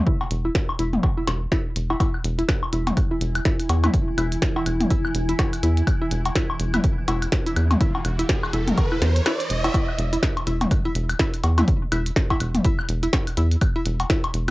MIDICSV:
0, 0, Header, 1, 6, 480
1, 0, Start_track
1, 0, Tempo, 483871
1, 65, Time_signature, 4, 2, 24, 8
1, 14389, End_track
2, 0, Start_track
2, 0, Title_t, "Synth arpeggio sound"
2, 0, Program_c, 0, 84
2, 66, Note_on_c, 0, 64, 76
2, 162, Note_off_c, 0, 64, 0
2, 446, Note_on_c, 0, 64, 79
2, 491, Note_off_c, 0, 64, 0
2, 785, Note_on_c, 0, 64, 76
2, 882, Note_off_c, 0, 64, 0
2, 1166, Note_on_c, 0, 64, 75
2, 1211, Note_off_c, 0, 64, 0
2, 1505, Note_on_c, 0, 64, 84
2, 1602, Note_off_c, 0, 64, 0
2, 1887, Note_on_c, 0, 64, 73
2, 1932, Note_off_c, 0, 64, 0
2, 1985, Note_on_c, 0, 64, 81
2, 2082, Note_off_c, 0, 64, 0
2, 2366, Note_on_c, 0, 64, 76
2, 2411, Note_off_c, 0, 64, 0
2, 2705, Note_on_c, 0, 64, 76
2, 2802, Note_off_c, 0, 64, 0
2, 3085, Note_on_c, 0, 64, 75
2, 3131, Note_off_c, 0, 64, 0
2, 3425, Note_on_c, 0, 64, 82
2, 3521, Note_off_c, 0, 64, 0
2, 3806, Note_on_c, 0, 64, 78
2, 3851, Note_off_c, 0, 64, 0
2, 4145, Note_on_c, 0, 64, 82
2, 4241, Note_off_c, 0, 64, 0
2, 4526, Note_on_c, 0, 64, 76
2, 4571, Note_off_c, 0, 64, 0
2, 4865, Note_on_c, 0, 64, 82
2, 4961, Note_off_c, 0, 64, 0
2, 5246, Note_on_c, 0, 64, 74
2, 5291, Note_off_c, 0, 64, 0
2, 5586, Note_on_c, 0, 64, 75
2, 5682, Note_off_c, 0, 64, 0
2, 5967, Note_on_c, 0, 64, 76
2, 6012, Note_off_c, 0, 64, 0
2, 6305, Note_on_c, 0, 64, 80
2, 6401, Note_off_c, 0, 64, 0
2, 6686, Note_on_c, 0, 64, 75
2, 6731, Note_off_c, 0, 64, 0
2, 7024, Note_on_c, 0, 64, 78
2, 7121, Note_off_c, 0, 64, 0
2, 7406, Note_on_c, 0, 64, 79
2, 7451, Note_off_c, 0, 64, 0
2, 7745, Note_on_c, 0, 64, 80
2, 7841, Note_off_c, 0, 64, 0
2, 8126, Note_on_c, 0, 64, 78
2, 8171, Note_off_c, 0, 64, 0
2, 8465, Note_on_c, 0, 64, 77
2, 8562, Note_off_c, 0, 64, 0
2, 8846, Note_on_c, 0, 64, 76
2, 8891, Note_off_c, 0, 64, 0
2, 9186, Note_on_c, 0, 64, 84
2, 9282, Note_off_c, 0, 64, 0
2, 9567, Note_on_c, 0, 64, 80
2, 9612, Note_off_c, 0, 64, 0
2, 9666, Note_on_c, 0, 64, 82
2, 9762, Note_off_c, 0, 64, 0
2, 10046, Note_on_c, 0, 64, 75
2, 10091, Note_off_c, 0, 64, 0
2, 10385, Note_on_c, 0, 64, 75
2, 10482, Note_off_c, 0, 64, 0
2, 10766, Note_on_c, 0, 64, 77
2, 10811, Note_off_c, 0, 64, 0
2, 11106, Note_on_c, 0, 64, 82
2, 11202, Note_off_c, 0, 64, 0
2, 11487, Note_on_c, 0, 64, 77
2, 11532, Note_off_c, 0, 64, 0
2, 11825, Note_on_c, 0, 64, 81
2, 11922, Note_off_c, 0, 64, 0
2, 12207, Note_on_c, 0, 64, 74
2, 12252, Note_off_c, 0, 64, 0
2, 12546, Note_on_c, 0, 64, 85
2, 12642, Note_off_c, 0, 64, 0
2, 12926, Note_on_c, 0, 64, 76
2, 12971, Note_off_c, 0, 64, 0
2, 13264, Note_on_c, 0, 64, 78
2, 13361, Note_off_c, 0, 64, 0
2, 13647, Note_on_c, 0, 64, 79
2, 13691, Note_off_c, 0, 64, 0
2, 13985, Note_on_c, 0, 64, 82
2, 14082, Note_off_c, 0, 64, 0
2, 14389, End_track
3, 0, Start_track
3, 0, Title_t, "Synth drone"
3, 0, Program_c, 1, 95
3, 1986, Note_on_c, 1, 64, 85
3, 1987, Note_on_c, 1, 52, 86
3, 9677, Note_off_c, 1, 52, 0
3, 9677, Note_off_c, 1, 64, 0
3, 14389, End_track
4, 0, Start_track
4, 0, Title_t, "Analog synth bass"
4, 0, Program_c, 2, 38
4, 306, Note_on_c, 2, 28, 100
4, 494, Note_off_c, 2, 28, 0
4, 786, Note_on_c, 2, 28, 91
4, 974, Note_off_c, 2, 28, 0
4, 1266, Note_on_c, 2, 28, 86
4, 1454, Note_off_c, 2, 28, 0
4, 1746, Note_on_c, 2, 28, 83
4, 1934, Note_off_c, 2, 28, 0
4, 2225, Note_on_c, 2, 28, 100
4, 2413, Note_off_c, 2, 28, 0
4, 2706, Note_on_c, 2, 28, 90
4, 2894, Note_off_c, 2, 28, 0
4, 3185, Note_on_c, 2, 28, 94
4, 3373, Note_off_c, 2, 28, 0
4, 3664, Note_on_c, 2, 40, 89
4, 3853, Note_off_c, 2, 40, 0
4, 4144, Note_on_c, 2, 28, 98
4, 4333, Note_off_c, 2, 28, 0
4, 4624, Note_on_c, 2, 28, 87
4, 4813, Note_off_c, 2, 28, 0
4, 5105, Note_on_c, 2, 28, 95
4, 5293, Note_off_c, 2, 28, 0
4, 5584, Note_on_c, 2, 40, 88
4, 5773, Note_off_c, 2, 40, 0
4, 6065, Note_on_c, 2, 28, 99
4, 6253, Note_off_c, 2, 28, 0
4, 6545, Note_on_c, 2, 28, 92
4, 6733, Note_off_c, 2, 28, 0
4, 7025, Note_on_c, 2, 28, 97
4, 7213, Note_off_c, 2, 28, 0
4, 7505, Note_on_c, 2, 40, 91
4, 7693, Note_off_c, 2, 40, 0
4, 7985, Note_on_c, 2, 28, 101
4, 8173, Note_off_c, 2, 28, 0
4, 8465, Note_on_c, 2, 28, 90
4, 8653, Note_off_c, 2, 28, 0
4, 8945, Note_on_c, 2, 40, 100
4, 9133, Note_off_c, 2, 40, 0
4, 9426, Note_on_c, 2, 28, 95
4, 9614, Note_off_c, 2, 28, 0
4, 9906, Note_on_c, 2, 28, 100
4, 10094, Note_off_c, 2, 28, 0
4, 10385, Note_on_c, 2, 28, 91
4, 10574, Note_off_c, 2, 28, 0
4, 10865, Note_on_c, 2, 28, 99
4, 11054, Note_off_c, 2, 28, 0
4, 11346, Note_on_c, 2, 40, 89
4, 11534, Note_off_c, 2, 40, 0
4, 11825, Note_on_c, 2, 28, 99
4, 12014, Note_off_c, 2, 28, 0
4, 12306, Note_on_c, 2, 28, 92
4, 12494, Note_off_c, 2, 28, 0
4, 12786, Note_on_c, 2, 28, 100
4, 12974, Note_off_c, 2, 28, 0
4, 13267, Note_on_c, 2, 40, 90
4, 13454, Note_off_c, 2, 40, 0
4, 13746, Note_on_c, 2, 28, 97
4, 13934, Note_off_c, 2, 28, 0
4, 14226, Note_on_c, 2, 28, 89
4, 14389, Note_off_c, 2, 28, 0
4, 14389, End_track
5, 0, Start_track
5, 0, Title_t, "Riser"
5, 0, Program_c, 3, 103
5, 5825, Note_on_c, 3, 60, 75
5, 9665, Note_off_c, 3, 60, 0
5, 14389, End_track
6, 0, Start_track
6, 0, Title_t, "Drums"
6, 65, Note_on_c, 9, 36, 117
6, 165, Note_off_c, 9, 36, 0
6, 206, Note_on_c, 9, 56, 64
6, 306, Note_off_c, 9, 56, 0
6, 306, Note_on_c, 9, 42, 92
6, 405, Note_off_c, 9, 42, 0
6, 545, Note_on_c, 9, 36, 108
6, 546, Note_on_c, 9, 38, 90
6, 645, Note_off_c, 9, 36, 0
6, 645, Note_off_c, 9, 38, 0
6, 686, Note_on_c, 9, 77, 80
6, 785, Note_off_c, 9, 77, 0
6, 785, Note_on_c, 9, 42, 95
6, 885, Note_off_c, 9, 42, 0
6, 926, Note_on_c, 9, 45, 78
6, 1024, Note_on_c, 9, 56, 61
6, 1025, Note_off_c, 9, 45, 0
6, 1025, Note_on_c, 9, 36, 111
6, 1124, Note_off_c, 9, 56, 0
6, 1125, Note_off_c, 9, 36, 0
6, 1265, Note_on_c, 9, 77, 71
6, 1266, Note_on_c, 9, 38, 55
6, 1266, Note_on_c, 9, 42, 90
6, 1364, Note_off_c, 9, 77, 0
6, 1365, Note_off_c, 9, 38, 0
6, 1365, Note_off_c, 9, 42, 0
6, 1505, Note_on_c, 9, 36, 112
6, 1506, Note_on_c, 9, 38, 89
6, 1604, Note_off_c, 9, 36, 0
6, 1606, Note_off_c, 9, 38, 0
6, 1746, Note_on_c, 9, 42, 94
6, 1845, Note_off_c, 9, 42, 0
6, 1886, Note_on_c, 9, 56, 61
6, 1984, Note_off_c, 9, 56, 0
6, 1984, Note_on_c, 9, 56, 64
6, 1985, Note_on_c, 9, 36, 111
6, 1986, Note_on_c, 9, 42, 46
6, 2083, Note_off_c, 9, 56, 0
6, 2084, Note_off_c, 9, 36, 0
6, 2085, Note_off_c, 9, 42, 0
6, 2125, Note_on_c, 9, 76, 38
6, 2224, Note_off_c, 9, 76, 0
6, 2226, Note_on_c, 9, 42, 93
6, 2325, Note_off_c, 9, 42, 0
6, 2367, Note_on_c, 9, 42, 39
6, 2465, Note_on_c, 9, 36, 105
6, 2465, Note_on_c, 9, 76, 73
6, 2466, Note_off_c, 9, 42, 0
6, 2466, Note_on_c, 9, 38, 87
6, 2466, Note_on_c, 9, 42, 50
6, 2564, Note_off_c, 9, 36, 0
6, 2564, Note_off_c, 9, 76, 0
6, 2565, Note_off_c, 9, 38, 0
6, 2565, Note_off_c, 9, 42, 0
6, 2606, Note_on_c, 9, 77, 76
6, 2705, Note_off_c, 9, 77, 0
6, 2705, Note_on_c, 9, 42, 88
6, 2804, Note_off_c, 9, 42, 0
6, 2846, Note_on_c, 9, 45, 73
6, 2846, Note_on_c, 9, 56, 66
6, 2847, Note_on_c, 9, 42, 38
6, 2944, Note_on_c, 9, 76, 36
6, 2945, Note_off_c, 9, 42, 0
6, 2945, Note_off_c, 9, 45, 0
6, 2945, Note_off_c, 9, 56, 0
6, 2945, Note_on_c, 9, 36, 112
6, 2945, Note_on_c, 9, 42, 49
6, 3044, Note_off_c, 9, 36, 0
6, 3044, Note_off_c, 9, 76, 0
6, 3045, Note_off_c, 9, 42, 0
6, 3186, Note_on_c, 9, 42, 83
6, 3285, Note_off_c, 9, 42, 0
6, 3326, Note_on_c, 9, 42, 39
6, 3326, Note_on_c, 9, 76, 77
6, 3425, Note_off_c, 9, 42, 0
6, 3425, Note_on_c, 9, 36, 110
6, 3425, Note_on_c, 9, 38, 86
6, 3425, Note_on_c, 9, 42, 48
6, 3426, Note_off_c, 9, 76, 0
6, 3524, Note_off_c, 9, 36, 0
6, 3524, Note_off_c, 9, 38, 0
6, 3524, Note_off_c, 9, 42, 0
6, 3567, Note_on_c, 9, 42, 47
6, 3664, Note_off_c, 9, 42, 0
6, 3664, Note_on_c, 9, 42, 92
6, 3665, Note_on_c, 9, 56, 67
6, 3764, Note_off_c, 9, 42, 0
6, 3764, Note_off_c, 9, 56, 0
6, 3806, Note_on_c, 9, 42, 37
6, 3806, Note_on_c, 9, 45, 86
6, 3806, Note_on_c, 9, 76, 36
6, 3806, Note_on_c, 9, 77, 75
6, 3905, Note_off_c, 9, 42, 0
6, 3905, Note_off_c, 9, 45, 0
6, 3905, Note_off_c, 9, 76, 0
6, 3905, Note_off_c, 9, 77, 0
6, 3905, Note_on_c, 9, 36, 111
6, 3905, Note_on_c, 9, 42, 51
6, 4004, Note_off_c, 9, 36, 0
6, 4004, Note_off_c, 9, 42, 0
6, 4145, Note_on_c, 9, 42, 89
6, 4145, Note_on_c, 9, 76, 76
6, 4244, Note_off_c, 9, 42, 0
6, 4244, Note_off_c, 9, 76, 0
6, 4286, Note_on_c, 9, 42, 43
6, 4385, Note_off_c, 9, 42, 0
6, 4385, Note_on_c, 9, 36, 103
6, 4385, Note_on_c, 9, 38, 86
6, 4385, Note_on_c, 9, 42, 52
6, 4484, Note_off_c, 9, 36, 0
6, 4485, Note_off_c, 9, 38, 0
6, 4485, Note_off_c, 9, 42, 0
6, 4526, Note_on_c, 9, 56, 67
6, 4526, Note_on_c, 9, 77, 72
6, 4625, Note_off_c, 9, 56, 0
6, 4625, Note_off_c, 9, 77, 0
6, 4625, Note_on_c, 9, 42, 90
6, 4625, Note_on_c, 9, 76, 39
6, 4724, Note_off_c, 9, 42, 0
6, 4724, Note_off_c, 9, 76, 0
6, 4766, Note_on_c, 9, 45, 74
6, 4767, Note_on_c, 9, 42, 39
6, 4865, Note_off_c, 9, 42, 0
6, 4865, Note_off_c, 9, 45, 0
6, 4865, Note_on_c, 9, 36, 104
6, 4865, Note_on_c, 9, 42, 49
6, 4964, Note_off_c, 9, 36, 0
6, 4964, Note_off_c, 9, 42, 0
6, 5006, Note_on_c, 9, 76, 76
6, 5105, Note_off_c, 9, 76, 0
6, 5105, Note_on_c, 9, 42, 83
6, 5204, Note_off_c, 9, 42, 0
6, 5246, Note_on_c, 9, 42, 39
6, 5345, Note_off_c, 9, 42, 0
6, 5345, Note_on_c, 9, 36, 101
6, 5345, Note_on_c, 9, 38, 89
6, 5345, Note_on_c, 9, 42, 51
6, 5345, Note_on_c, 9, 56, 65
6, 5444, Note_off_c, 9, 36, 0
6, 5444, Note_off_c, 9, 38, 0
6, 5444, Note_off_c, 9, 42, 0
6, 5444, Note_off_c, 9, 56, 0
6, 5486, Note_on_c, 9, 42, 49
6, 5486, Note_on_c, 9, 76, 37
6, 5585, Note_off_c, 9, 76, 0
6, 5586, Note_off_c, 9, 42, 0
6, 5586, Note_on_c, 9, 42, 87
6, 5685, Note_off_c, 9, 42, 0
6, 5726, Note_on_c, 9, 42, 40
6, 5824, Note_on_c, 9, 76, 83
6, 5825, Note_off_c, 9, 42, 0
6, 5825, Note_on_c, 9, 36, 106
6, 5825, Note_on_c, 9, 42, 51
6, 5923, Note_off_c, 9, 76, 0
6, 5924, Note_off_c, 9, 36, 0
6, 5924, Note_off_c, 9, 42, 0
6, 6064, Note_on_c, 9, 42, 86
6, 6163, Note_off_c, 9, 42, 0
6, 6205, Note_on_c, 9, 42, 45
6, 6206, Note_on_c, 9, 56, 68
6, 6305, Note_off_c, 9, 42, 0
6, 6305, Note_off_c, 9, 56, 0
6, 6305, Note_on_c, 9, 36, 98
6, 6305, Note_on_c, 9, 38, 89
6, 6305, Note_on_c, 9, 42, 54
6, 6306, Note_on_c, 9, 76, 38
6, 6404, Note_off_c, 9, 36, 0
6, 6404, Note_off_c, 9, 38, 0
6, 6404, Note_off_c, 9, 42, 0
6, 6405, Note_off_c, 9, 76, 0
6, 6447, Note_on_c, 9, 77, 73
6, 6545, Note_on_c, 9, 42, 90
6, 6546, Note_off_c, 9, 77, 0
6, 6644, Note_off_c, 9, 42, 0
6, 6686, Note_on_c, 9, 42, 40
6, 6686, Note_on_c, 9, 45, 77
6, 6686, Note_on_c, 9, 76, 79
6, 6785, Note_off_c, 9, 42, 0
6, 6785, Note_off_c, 9, 45, 0
6, 6785, Note_off_c, 9, 76, 0
6, 6785, Note_on_c, 9, 36, 109
6, 6785, Note_on_c, 9, 42, 53
6, 6884, Note_off_c, 9, 36, 0
6, 6884, Note_off_c, 9, 42, 0
6, 7024, Note_on_c, 9, 42, 85
6, 7024, Note_on_c, 9, 56, 68
6, 7123, Note_off_c, 9, 42, 0
6, 7124, Note_off_c, 9, 56, 0
6, 7165, Note_on_c, 9, 76, 40
6, 7166, Note_on_c, 9, 42, 43
6, 7264, Note_off_c, 9, 42, 0
6, 7264, Note_on_c, 9, 38, 92
6, 7264, Note_on_c, 9, 42, 53
6, 7265, Note_off_c, 9, 76, 0
6, 7265, Note_on_c, 9, 36, 103
6, 7364, Note_off_c, 9, 36, 0
6, 7364, Note_off_c, 9, 38, 0
6, 7364, Note_off_c, 9, 42, 0
6, 7407, Note_on_c, 9, 42, 51
6, 7505, Note_off_c, 9, 42, 0
6, 7505, Note_on_c, 9, 42, 86
6, 7505, Note_on_c, 9, 76, 82
6, 7604, Note_off_c, 9, 42, 0
6, 7604, Note_off_c, 9, 76, 0
6, 7646, Note_on_c, 9, 45, 88
6, 7646, Note_on_c, 9, 77, 72
6, 7647, Note_on_c, 9, 42, 42
6, 7745, Note_off_c, 9, 42, 0
6, 7745, Note_on_c, 9, 36, 112
6, 7745, Note_on_c, 9, 42, 52
6, 7746, Note_off_c, 9, 45, 0
6, 7746, Note_off_c, 9, 77, 0
6, 7844, Note_off_c, 9, 36, 0
6, 7844, Note_off_c, 9, 42, 0
6, 7886, Note_on_c, 9, 56, 68
6, 7985, Note_off_c, 9, 56, 0
6, 7985, Note_on_c, 9, 42, 87
6, 7985, Note_on_c, 9, 76, 41
6, 8084, Note_off_c, 9, 42, 0
6, 8084, Note_off_c, 9, 76, 0
6, 8127, Note_on_c, 9, 42, 45
6, 8225, Note_off_c, 9, 42, 0
6, 8225, Note_on_c, 9, 36, 101
6, 8225, Note_on_c, 9, 38, 94
6, 8225, Note_on_c, 9, 42, 54
6, 8324, Note_off_c, 9, 36, 0
6, 8325, Note_off_c, 9, 38, 0
6, 8325, Note_off_c, 9, 42, 0
6, 8366, Note_on_c, 9, 76, 84
6, 8366, Note_on_c, 9, 77, 75
6, 8465, Note_on_c, 9, 42, 93
6, 8466, Note_off_c, 9, 76, 0
6, 8466, Note_off_c, 9, 77, 0
6, 8565, Note_off_c, 9, 42, 0
6, 8606, Note_on_c, 9, 42, 41
6, 8606, Note_on_c, 9, 45, 79
6, 8705, Note_off_c, 9, 45, 0
6, 8705, Note_on_c, 9, 36, 107
6, 8705, Note_on_c, 9, 56, 66
6, 8706, Note_off_c, 9, 42, 0
6, 8706, Note_on_c, 9, 42, 52
6, 8804, Note_off_c, 9, 36, 0
6, 8804, Note_off_c, 9, 56, 0
6, 8805, Note_off_c, 9, 42, 0
6, 8847, Note_on_c, 9, 76, 42
6, 8946, Note_off_c, 9, 76, 0
6, 8946, Note_on_c, 9, 38, 58
6, 8946, Note_on_c, 9, 42, 84
6, 9045, Note_off_c, 9, 38, 0
6, 9045, Note_off_c, 9, 42, 0
6, 9088, Note_on_c, 9, 42, 43
6, 9185, Note_on_c, 9, 76, 81
6, 9186, Note_off_c, 9, 42, 0
6, 9186, Note_on_c, 9, 38, 95
6, 9186, Note_on_c, 9, 42, 54
6, 9284, Note_off_c, 9, 76, 0
6, 9285, Note_off_c, 9, 38, 0
6, 9285, Note_off_c, 9, 42, 0
6, 9327, Note_on_c, 9, 42, 51
6, 9426, Note_off_c, 9, 42, 0
6, 9426, Note_on_c, 9, 42, 87
6, 9525, Note_off_c, 9, 42, 0
6, 9566, Note_on_c, 9, 56, 68
6, 9567, Note_on_c, 9, 42, 44
6, 9664, Note_off_c, 9, 56, 0
6, 9664, Note_on_c, 9, 56, 66
6, 9665, Note_on_c, 9, 36, 117
6, 9666, Note_off_c, 9, 42, 0
6, 9666, Note_on_c, 9, 42, 53
6, 9763, Note_off_c, 9, 56, 0
6, 9764, Note_off_c, 9, 36, 0
6, 9766, Note_off_c, 9, 42, 0
6, 9805, Note_on_c, 9, 76, 42
6, 9905, Note_off_c, 9, 76, 0
6, 9906, Note_on_c, 9, 42, 93
6, 10005, Note_off_c, 9, 42, 0
6, 10048, Note_on_c, 9, 42, 46
6, 10145, Note_on_c, 9, 36, 117
6, 10145, Note_on_c, 9, 76, 78
6, 10147, Note_off_c, 9, 42, 0
6, 10147, Note_on_c, 9, 38, 99
6, 10147, Note_on_c, 9, 42, 54
6, 10244, Note_off_c, 9, 36, 0
6, 10244, Note_off_c, 9, 76, 0
6, 10246, Note_off_c, 9, 38, 0
6, 10246, Note_off_c, 9, 42, 0
6, 10286, Note_on_c, 9, 77, 76
6, 10288, Note_on_c, 9, 42, 36
6, 10386, Note_off_c, 9, 42, 0
6, 10386, Note_off_c, 9, 77, 0
6, 10386, Note_on_c, 9, 42, 94
6, 10486, Note_off_c, 9, 42, 0
6, 10527, Note_on_c, 9, 42, 43
6, 10527, Note_on_c, 9, 45, 83
6, 10527, Note_on_c, 9, 56, 67
6, 10625, Note_on_c, 9, 36, 115
6, 10626, Note_off_c, 9, 42, 0
6, 10626, Note_off_c, 9, 45, 0
6, 10626, Note_off_c, 9, 56, 0
6, 10626, Note_on_c, 9, 42, 54
6, 10626, Note_on_c, 9, 76, 43
6, 10724, Note_off_c, 9, 36, 0
6, 10725, Note_off_c, 9, 76, 0
6, 10726, Note_off_c, 9, 42, 0
6, 10866, Note_on_c, 9, 42, 90
6, 10965, Note_off_c, 9, 42, 0
6, 11006, Note_on_c, 9, 76, 83
6, 11007, Note_on_c, 9, 42, 43
6, 11105, Note_off_c, 9, 42, 0
6, 11105, Note_off_c, 9, 76, 0
6, 11105, Note_on_c, 9, 36, 124
6, 11105, Note_on_c, 9, 38, 96
6, 11105, Note_on_c, 9, 42, 58
6, 11204, Note_off_c, 9, 36, 0
6, 11204, Note_off_c, 9, 38, 0
6, 11204, Note_off_c, 9, 42, 0
6, 11247, Note_on_c, 9, 42, 50
6, 11345, Note_off_c, 9, 42, 0
6, 11345, Note_on_c, 9, 42, 91
6, 11345, Note_on_c, 9, 56, 67
6, 11444, Note_off_c, 9, 42, 0
6, 11444, Note_off_c, 9, 56, 0
6, 11487, Note_on_c, 9, 42, 44
6, 11487, Note_on_c, 9, 45, 95
6, 11487, Note_on_c, 9, 76, 40
6, 11487, Note_on_c, 9, 77, 80
6, 11585, Note_off_c, 9, 42, 0
6, 11585, Note_on_c, 9, 36, 124
6, 11585, Note_on_c, 9, 42, 53
6, 11586, Note_off_c, 9, 45, 0
6, 11586, Note_off_c, 9, 76, 0
6, 11586, Note_off_c, 9, 77, 0
6, 11684, Note_off_c, 9, 42, 0
6, 11685, Note_off_c, 9, 36, 0
6, 11824, Note_on_c, 9, 76, 83
6, 11825, Note_on_c, 9, 42, 99
6, 11923, Note_off_c, 9, 76, 0
6, 11924, Note_off_c, 9, 42, 0
6, 11966, Note_on_c, 9, 42, 45
6, 12065, Note_off_c, 9, 42, 0
6, 12065, Note_on_c, 9, 36, 127
6, 12065, Note_on_c, 9, 38, 98
6, 12065, Note_on_c, 9, 42, 55
6, 12164, Note_off_c, 9, 36, 0
6, 12164, Note_off_c, 9, 38, 0
6, 12164, Note_off_c, 9, 42, 0
6, 12206, Note_on_c, 9, 36, 65
6, 12206, Note_on_c, 9, 42, 37
6, 12206, Note_on_c, 9, 56, 63
6, 12206, Note_on_c, 9, 77, 82
6, 12305, Note_off_c, 9, 42, 0
6, 12305, Note_off_c, 9, 56, 0
6, 12305, Note_off_c, 9, 77, 0
6, 12305, Note_on_c, 9, 42, 98
6, 12305, Note_on_c, 9, 76, 41
6, 12306, Note_off_c, 9, 36, 0
6, 12404, Note_off_c, 9, 42, 0
6, 12404, Note_off_c, 9, 76, 0
6, 12446, Note_on_c, 9, 42, 42
6, 12446, Note_on_c, 9, 45, 80
6, 12545, Note_off_c, 9, 42, 0
6, 12545, Note_off_c, 9, 45, 0
6, 12545, Note_on_c, 9, 42, 51
6, 12546, Note_on_c, 9, 36, 122
6, 12644, Note_off_c, 9, 42, 0
6, 12645, Note_off_c, 9, 36, 0
6, 12685, Note_on_c, 9, 76, 83
6, 12785, Note_off_c, 9, 76, 0
6, 12785, Note_on_c, 9, 42, 94
6, 12884, Note_off_c, 9, 42, 0
6, 12926, Note_on_c, 9, 42, 42
6, 13025, Note_off_c, 9, 42, 0
6, 13025, Note_on_c, 9, 38, 97
6, 13025, Note_on_c, 9, 42, 54
6, 13025, Note_on_c, 9, 56, 60
6, 13026, Note_on_c, 9, 36, 125
6, 13124, Note_off_c, 9, 38, 0
6, 13124, Note_off_c, 9, 42, 0
6, 13124, Note_off_c, 9, 56, 0
6, 13125, Note_off_c, 9, 36, 0
6, 13166, Note_on_c, 9, 42, 52
6, 13167, Note_on_c, 9, 76, 40
6, 13265, Note_off_c, 9, 42, 0
6, 13265, Note_on_c, 9, 42, 95
6, 13266, Note_off_c, 9, 76, 0
6, 13364, Note_off_c, 9, 42, 0
6, 13406, Note_on_c, 9, 42, 42
6, 13504, Note_off_c, 9, 42, 0
6, 13504, Note_on_c, 9, 42, 50
6, 13505, Note_on_c, 9, 36, 123
6, 13505, Note_on_c, 9, 76, 78
6, 13604, Note_off_c, 9, 36, 0
6, 13604, Note_off_c, 9, 42, 0
6, 13604, Note_off_c, 9, 76, 0
6, 13744, Note_on_c, 9, 42, 99
6, 13844, Note_off_c, 9, 42, 0
6, 13886, Note_on_c, 9, 42, 42
6, 13887, Note_on_c, 9, 56, 64
6, 13985, Note_off_c, 9, 42, 0
6, 13985, Note_on_c, 9, 36, 125
6, 13985, Note_on_c, 9, 38, 94
6, 13985, Note_on_c, 9, 42, 51
6, 13985, Note_on_c, 9, 76, 38
6, 13986, Note_off_c, 9, 56, 0
6, 14084, Note_off_c, 9, 36, 0
6, 14084, Note_off_c, 9, 38, 0
6, 14084, Note_off_c, 9, 42, 0
6, 14084, Note_off_c, 9, 76, 0
6, 14126, Note_on_c, 9, 42, 39
6, 14127, Note_on_c, 9, 77, 82
6, 14225, Note_off_c, 9, 42, 0
6, 14225, Note_on_c, 9, 42, 99
6, 14226, Note_off_c, 9, 77, 0
6, 14324, Note_off_c, 9, 42, 0
6, 14389, End_track
0, 0, End_of_file